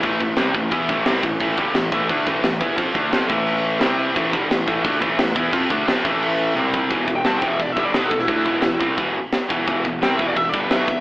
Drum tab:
CC |x-x-x-x-x-x-x-x-|x-x-x-x-x-x-x-x-|x-x-x-x-x-x-x-x-|x-x-x-x-x-x-x-x-|
SD |----o-------oo--|----o-------oo--|----o-------o---|----o-------oo--|
T1 |----------------|----------------|----------------|----------------|
BD |o-o---o-o-o---o-|o-o---o-o-o---o-|o-o---o---------|o-o---o-o-o---o-|

CC |x-x-x-x-x-x-----|x---x---x---x---|x---x---x---x---|x---x---x---x---|
SD |----o-----------|----o-------o--o|----o-------o---|----o-------o---|
T1 |------------o---|----------------|----------------|----------------|
BD |o-o---o-------o-|o-o---o-o-o---o-|o-o---o-o-----o-|o-o---o-o-o---o-|